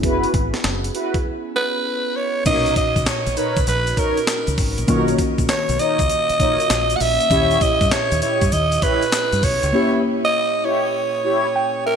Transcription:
Already playing: F#1 B3 C#4 E4 G#4
0.03 E4 F#4 B4, kick, closed hi-hat
0.23 closed hi-hat
0.34 G#1, kick, closed hi-hat
0.54 snare, closed hi-hat
0.64 F#1, snare, clap, closed hi-hat
0.84 closed hi-hat
0.94 E4 F#4 B4, closed hi-hat
1.14 kick, closed hi-hat
1.56 B4
2.16 C#5
2.45 B1 A#2 C#4 D#4 E4 A#4 C#5 D#5, kick, closed hi-hat, crash, shaker
2.54 F#4
2.66 closed hi-hat, shaker
2.76 D#5, kick, closed hi-hat, shaker
2.96 C#2, kick, closed hi-hat, shaker
3.06 C#5, snare, clap, closed hi-hat, shaker
3.27 A#1, closed hi-hat, shaker
3.36 D#4 A#4 B4 C#5, closed hi-hat, shaker
3.57 C#2, kick, closed hi-hat, shaker
3.67 A#1 B4, closed hi-hat, shaker
3.87 closed hi-hat, shaker
3.97 D#4 A#4 C#5, kick, closed hi-hat, shaker
4.17 closed hi-hat, shaker
4.27 snare, clap, closed hi-hat, shaker
4.47 C#2, closed hi-hat, shaker
4.58 G#1, kick, open hi-hat, shaker
4.78 A#1, closed hi-hat, shaker
4.87 B1 D#3 A#3 C#4 D#4 F4 A#4 C#5, kick, closed hi-hat, shaker
4.96 F#4
5.08 closed hi-hat, shaker
5.19 kick, closed hi-hat, shaker
5.38 A#1, kick, closed hi-hat, shaker
5.49 C#5, snare, clap, closed hi-hat, shaker
5.69 B1, closed hi-hat, shaker
5.79 D#4 A#4 C#5 D#5, closed hi-hat, shaker
5.99 C#2, kick, closed hi-hat, shaker
6.10 closed hi-hat, shaker
6.29 muted fingered electric bass stroke, closed hi-hat, shaker
6.39 A#1 D#4 A#4 C#5, kick, closed hi-hat, shaker
6.60 closed hi-hat, shaker
6.70 A#1, snare, clap, closed hi-hat, shaker
6.90 closed hi-hat, shaker
6.96 F#5
7.00 A#1 E5, open hi-hat, shaker
7.20 closed hi-hat, shaker
7.30 D#2 A#2 C#4 E4 G4 C#5, kick, closed hi-hat, shaker
7.51 closed hi-hat, shaker
7.61 D#5, kick, closed hi-hat, shaker
7.81 G2, kick, closed hi-hat, shaker
7.91 C#5, snare, clap, closed hi-hat, shaker
8.12 D#2, closed hi-hat, shaker
8.22 E4 G4 C#5, closed hi-hat, shaker
8.41 G2, kick, closed hi-hat, shaker
8.52 D#2 D#5, closed hi-hat, shaker
8.72 closed hi-hat, shaker
8.82 E4 G4 B4 C#5, kick, closed hi-hat, shaker
9.02 closed hi-hat, shaker
9.12 snare, clap, closed hi-hat, shaker
9.32 G2, closed hi-hat, shaker
9.43 B1 C#5, kick, open hi-hat, shaker
9.63 C#2, closed hi-hat, shaker
9.73 A#3 C#4 E4 G4 C#5
10.25 D#5
10.64 E4 G4 C#5
11.24 E4 G4 C#5
11.56 G5
11.86 A#4 E5

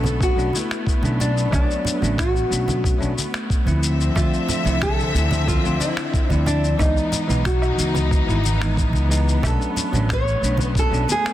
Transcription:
Already playing: B1 F#3 A3 B3 C#4 D4 A4
0.03 high conga, low conga, shaker
0.21 F#4, kick, shaker
0.36 B1 F#3 A3 C#4 D4, shaker
0.53 E4, high conga, shaker
0.71 finger snap, shaker
0.87 kick, shaker
1.01 B1 F#3 A3 C#4 D4, high conga, shaker
1.20 D4, low conga, shaker
1.38 shaker
1.51 B1 F#3 A3 D4 C#5, kick, high conga, low woodblock, shaker
1.71 shaker
1.85 low conga, shaker
2.01 A1 F#3 A3 C#4 D4, high conga, shaker
2.18 F#4, finger snap, kick, shaker
2.36 shaker
2.49 B1 F#3 A3 C#4 D4, shaker
2.68 high conga, low conga, shaker
2.84 kick, shaker
2.98 B1 F#3 A3 C#4 D4, shaker
3.18 high conga, shaker
3.34 finger snap, shaker
3.50 kick, shaker
3.65 D2 F3 A3 C4 E4, high conga, shaker
3.82 D3 F3 C4 E5, shaker
4.01 shaker
4.14 D2 F3 A3 C4 F4 E5, kick, high conga, low woodblock, shaker
4.34 shaker
4.49 low conga, shaker
4.64 C2 F3 A3 C4 E4, high conga, shaker
4.82 A4, finger snap, kick, shaker
5.00 shaker
5.13 D2 F3 A3 C4 E4, shaker
5.31 high conga, low conga, shaker
5.48 F4, kick, shaker
5.63 D2 F3 A3 C4 F4, shaker
5.80 E4, high conga, shaker
5.97 finger snap, shaker
6.14 kick, shaker
6.29 D2 F3 A3 C4 D4 E4, high conga, shaker
6.46 D4, low conga, shaker
6.64 shaker
6.77 C#2 E3 G#3 B3 D#4, kick, high conga, low woodblock, shaker
6.97 shaker
7.12 low conga, shaker
7.27 B1 E3 G#3 B3 D#4, high conga, shaker
7.45 F#4, finger snap, kick, shaker
7.62 low woodblock, shaker
7.77 C#2 E3 G#3 B3 D#4, shaker
7.95 high conga, low conga, shaker
8.11 kick, shaker
8.26 G#1 E3 G#3 B3 E4, shaker
8.44 high conga, shaker
8.60 E3 G#3 B3 D#4, finger snap, shaker
8.77 kick, shaker
8.93 C#2, high conga, shaker
9.09 E3 G#3 B3 D#4, shaker
9.29 shaker
9.42 B1 F#3 A3 C#4 D4, kick, high conga, low woodblock, shaker
9.47 A4
9.62 shaker
9.76 low conga, shaker
9.92 A1 F#3 A3 C#4 D4, high conga, shaker
10.09 C#5, finger snap, kick, shaker
10.28 shaker
10.41 B1 F#3 A3 C#4 D4, shaker
10.57 high conga, low conga, shaker
10.63 B4
10.75 A4, kick, shaker
10.91 B1 F#3 A3 C#4 D4, shaker
11.08 G#4, high conga, shaker
11.26 finger snap, shaker

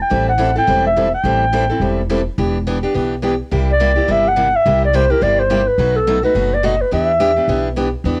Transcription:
0.01 G5
0.10 A1 E3 G3 C4 E4 A4
0.29 F#5
0.38 E3 G3 C4 E4 A4
0.55 C4 E4 A4 G5
0.67 E1 E3 G3 C4 E4 A4
0.86 E5
0.96 E3 G3 C4 E4 A4
1.14 G5
1.24 A1 E3 G3 C4 E4 A4
1.53 E3 G3 C4 E4 A4
1.70 C4 E4 A4
1.80 E1 E3 G3 C4 E4 A4
2.10 E3 G3 C4 E4 A4
2.38 E1 E3 B3 D4 G4
2.67 E3 B3 D4 G4
2.83 B3 D4 G4
2.94 B1 E3 B3 D4 G4
3.22 E3 B3 D4 G4
3.51 C2 C3 G3 A#3 E4 G4
3.72 D5
3.80 C3 G3 A#3 E4 G4
3.96 A#3 E4 G4
4.08 G1 C3 G3 A#3 E4 G4 E5
4.28 F#5
4.36 C3 G3 A#3 E4 G4
4.56 E5
4.66 C2 C3 G3 A#3 E4 G4
4.85 D5
4.93 C3 G3 A#3 E4 G4 C5
5.10 A#3 E4 G4 A#4
5.21 G1 C3 G3 A#3 E4 G4 D5
5.39 C5
5.50 C3 G3 A#3 E4 G4
5.67 B4
5.78 B1 B2 F#3 A3 D#4 F#4
5.96 A4
6.07 B2 F#3 A3 D#4 F#4
6.23 A3 D#4 F#4 B4
6.35 F#1 B2 F#3 A3 D#4 F#4
6.54 D5
6.63 B2 F#3 A3 D#4 F#4 D#5
6.81 B4
6.91 E2 E3 B3 D4 G4 E5
7.20 E3 B3 D4 G4
7.36 B3 D4 G4
7.48 B1 E3 B3 D4 G4
7.76 E3 B3 D4 G4
8.04 E2 E3 B3 D4 G4

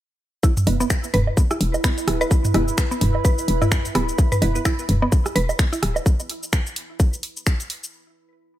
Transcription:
0.43 E4, kick, cabasa
0.57 mid tom, cabasa
0.67 E1 B3 E4 B4, open hi-hat, low woodblock
0.74 B4
0.80 B3 E4 B4, cabasa
0.90 finger snap, kick, cabasa
1.04 cabasa
1.14 E1 B4, mid tom, open hi-hat
1.27 low woodblock
1.37 kick, cabasa
1.44 B5
1.51 E4, cross-stick, cabasa
1.61 E1, open hi-hat
1.74 cabasa, low woodblock
1.84 B3, finger snap, kick, cabasa
1.98 open hi-hat, cabasa
2.08 D1, cross-stick, open hi-hat
2.21 B4, cabasa, low woodblock
2.31 kick, cabasa
2.45 mid tom, cabasa
2.54 E1 B3 E4 B4, cross-stick, open hi-hat, low woodblock
2.68 cabasa
2.78 finger snap, kick, cabasa
2.91 B3, cabasa
3.01 E1, mid tom, open hi-hat
3.15 low woodblock
3.25 B4, kick, cabasa
3.38 cabasa
3.48 E1, open hi-hat
3.62 E4, mid tom, cabasa, low woodblock
3.72 finger snap, kick, cabasa
3.85 open hi-hat, cabasa
3.95 D1 B3, cross-stick, open hi-hat
4.09 cabasa
4.18 kick, cabasa
4.32 B4, mid tom, cabasa
4.42 E1 B3 E4 B4, open hi-hat, low woodblock
4.55 B3 E4 B4, cabasa
4.65 E4, finger snap, kick, cabasa
4.79 cabasa
4.89 E1, mid tom, open hi-hat
5.02 B3, low woodblock
5.12 kick, cabasa
5.26 cross-stick, cabasa
5.36 E1 B4, open hi-hat
5.49 cabasa, low woodblock
5.59 finger snap, kick, cabasa
5.73 E4, open hi-hat, cabasa
5.83 D1, cross-stick, open hi-hat
5.96 cabasa, low woodblock
6.06 kick, cabasa
6.20 cabasa
6.30 open hi-hat
6.43 cabasa
6.53 finger snap, kick, cabasa
6.66 cabasa
6.76 open hi-hat
7.00 kick, cabasa
7.13 cabasa
7.23 open hi-hat
7.37 cabasa
7.47 finger snap, kick, cabasa
7.60 open hi-hat, cabasa
7.70 open hi-hat
7.84 cabasa

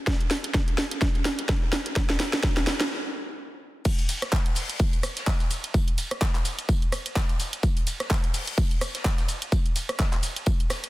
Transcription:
0.07 kick, snare
0.21 closed hi-hat
0.31 snare, open hi-hat
0.44 closed hi-hat
0.54 kick, snare
0.68 closed hi-hat
0.78 snare, open hi-hat
0.91 closed hi-hat
1.02 kick, snare
1.15 closed hi-hat
1.25 snare, open hi-hat
1.39 closed hi-hat
1.49 kick, snare
1.73 snare, open hi-hat
1.86 closed hi-hat
1.96 kick, snare
2.10 snare, closed hi-hat
2.20 snare, open hi-hat
2.33 snare, closed hi-hat
2.43 kick, snare
2.57 snare, closed hi-hat
2.67 snare, open hi-hat
2.80 snare, closed hi-hat
3.85 kick, crash, ride, tambourine, shaker
3.99 closed hi-hat, shaker
4.09 open hi-hat, ride, tambourine, shaker
4.22 cross-stick, snare, closed hi-hat, shaker
4.32 kick, snare, clap, tambourine, shaker
4.46 closed hi-hat, shaker
4.55 open hi-hat, ride, shaker
4.70 closed hi-hat, shaker
4.79 kick, ride, tambourine, shaker
4.93 closed hi-hat, shaker
5.03 cross-stick, open hi-hat, ride, tambourine, shaker
5.17 snare, closed hi-hat, shaker
5.27 kick, snare, clap, tambourine, shaker
5.40 snare, closed hi-hat, shaker
5.51 open hi-hat, ride, tambourine, shaker
5.64 closed hi-hat, shaker
5.74 kick, ride, tambourine, shaker
5.88 closed hi-hat, shaker
5.98 open hi-hat, ride, tambourine, shaker
6.11 cross-stick, closed hi-hat, shaker
6.21 kick, snare, clap, ride, tambourine, shaker
6.35 clap, closed hi-hat, shaker
6.45 open hi-hat, ride, tambourine, shaker
6.59 closed hi-hat, shaker
6.69 kick, ride, tambourine, shaker
6.82 closed hi-hat, shaker
6.92 cross-stick, open hi-hat, ride, tambourine, shaker
7.06 closed hi-hat, shaker
7.16 kick, snare, clap, ride, tambourine, shaker
7.29 closed hi-hat, shaker
7.40 open hi-hat, ride, tambourine, shaker
7.53 closed hi-hat, shaker
7.63 kick, ride, tambourine, shaker
7.77 closed hi-hat, shaker
7.87 open hi-hat, ride, tambourine, shaker
8.00 cross-stick, snare, closed hi-hat, shaker
8.10 kick, snare, clap, ride, tambourine, shaker
8.24 closed hi-hat, shaker
8.34 open hi-hat, ride, shaker
8.47 closed hi-hat, shaker
8.58 kick, ride, tambourine, shaker
8.71 closed hi-hat, shaker
8.81 cross-stick, open hi-hat, ride, tambourine, shaker
8.94 snare, closed hi-hat, shaker
9.04 kick, snare, clap, ride, tambourine, shaker
9.18 snare, closed hi-hat, shaker
9.29 open hi-hat, ride, tambourine, shaker
9.42 closed hi-hat, shaker
9.52 kick, ride, tambourine, shaker
9.66 closed hi-hat, shaker
9.76 open hi-hat, ride, tambourine, shaker
9.89 cross-stick, closed hi-hat, shaker
9.99 kick, snare, clap, ride, tambourine, shaker
10.12 clap, closed hi-hat, shaker
10.23 open hi-hat, ride, tambourine, shaker
10.36 closed hi-hat, shaker
10.46 kick, ride, tambourine, shaker
10.60 closed hi-hat, shaker
10.70 cross-stick, snare, open hi-hat, ride, tambourine, shaker
10.84 closed hi-hat, shaker

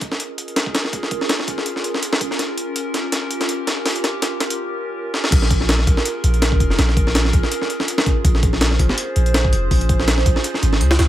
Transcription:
Already playing: C#4 F4 G#4 A#4
0.01 kick, closed hi-hat
0.12 snare
0.20 closed hi-hat
0.38 closed hi-hat
0.48 closed hi-hat
0.56 snare, closed hi-hat
0.66 kick
0.75 snare, closed hi-hat
0.85 snare
0.93 kick, closed hi-hat
1.03 snare
1.11 kick, closed hi-hat
1.21 snare
1.29 snare, closed hi-hat
1.39 snare
1.48 kick, closed hi-hat
1.58 snare
1.66 closed hi-hat
1.76 snare
1.84 closed hi-hat
1.94 snare
2.03 closed hi-hat
2.13 snare
2.21 kick, closed hi-hat
2.31 snare
2.39 G4, snare, closed hi-hat
2.58 closed hi-hat
2.76 closed hi-hat
2.94 snare, closed hi-hat
3.12 snare, closed hi-hat
3.31 closed hi-hat
3.41 snare, closed hi-hat
3.49 closed hi-hat
3.67 snare, closed hi-hat
3.86 snare, open hi-hat
3.96 closed hi-hat
4.04 snare, closed hi-hat
4.22 snare, closed hi-hat
4.40 snare, closed hi-hat
4.50 closed hi-hat
5.14 snare
5.24 snare
5.32 A#1 C#4 F4 G#4 A#4, kick, closed hi-hat, crash
5.42 snare
5.51 kick, closed hi-hat
5.61 snare
5.69 snare, closed hi-hat
5.79 snare
5.87 A#1, kick, closed hi-hat
5.97 snare
6.05 closed hi-hat
6.24 A#1, closed hi-hat
6.34 closed hi-hat
6.42 snare, closed hi-hat
6.52 kick
6.60 F1, kick, closed hi-hat
6.70 snare
6.79 A#1, snare, closed hi-hat
6.89 snare
6.97 kick, closed hi-hat
7.07 snare
7.15 snare, closed hi-hat
7.25 snare
7.33 A#1, kick, closed hi-hat
7.43 snare
7.52 closed hi-hat
7.62 snare
7.70 closed hi-hat
7.80 snare
7.88 closed hi-hat
7.98 snare
8.06 kick, closed hi-hat
8.25 A#1 C5, kick, closed hi-hat
8.35 snare
8.43 kick, closed hi-hat
8.53 snare
8.61 snare, closed hi-hat
8.71 snare
8.79 A#1, kick, closed hi-hat
8.89 snare
8.98 closed hi-hat
9.16 A#1, closed hi-hat
9.26 closed hi-hat
9.34 snare, closed hi-hat
9.44 kick
9.53 F1, closed hi-hat
9.71 A#1, kick, open hi-hat
9.81 closed hi-hat
9.89 kick, closed hi-hat
9.99 snare
10.08 snare, closed hi-hat
10.18 snare
10.26 A#1, kick, closed hi-hat
10.36 snare
10.44 closed hi-hat
10.54 snare
10.63 G#1, closed hi-hat
10.73 snare
10.81 C#2, closed hi-hat
10.91 snare
10.99 C#2, snare, closed hi-hat

